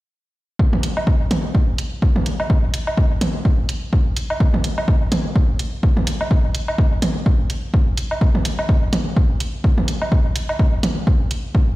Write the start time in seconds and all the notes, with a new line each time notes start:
0.59 kick
0.73 mid tom
0.83 closed hi-hat
0.97 low woodblock
1.07 kick
1.31 closed hi-hat, mid tom
1.55 kick
1.78 closed hi-hat
2.02 kick
2.16 mid tom
2.26 closed hi-hat
2.40 low woodblock
2.50 kick
2.74 closed hi-hat
2.87 low woodblock
2.97 kick
3.21 closed hi-hat, mid tom
3.45 kick
3.69 closed hi-hat
3.93 kick
4.17 closed hi-hat
4.30 low woodblock
4.40 kick
4.54 mid tom
4.64 closed hi-hat
4.78 low woodblock
4.88 kick
5.12 closed hi-hat, mid tom
5.36 kick
5.59 closed hi-hat
5.83 kick
5.97 mid tom
6.07 closed hi-hat
6.21 low woodblock
6.31 kick
6.55 closed hi-hat
6.68 low woodblock
6.78 kick
7.02 closed hi-hat, mid tom
7.26 kick
7.50 closed hi-hat
7.74 kick
7.97 closed hi-hat
8.11 low woodblock
8.21 kick
8.35 mid tom
8.45 closed hi-hat
8.59 low woodblock
8.69 kick
8.93 closed hi-hat, mid tom
9.17 kick
9.40 closed hi-hat
9.64 kick
9.78 mid tom
9.88 closed hi-hat
10.02 low woodblock
10.12 kick
10.36 closed hi-hat
10.49 low woodblock
10.59 kick
10.83 closed hi-hat, mid tom
11.07 kick
11.31 closed hi-hat
11.55 kick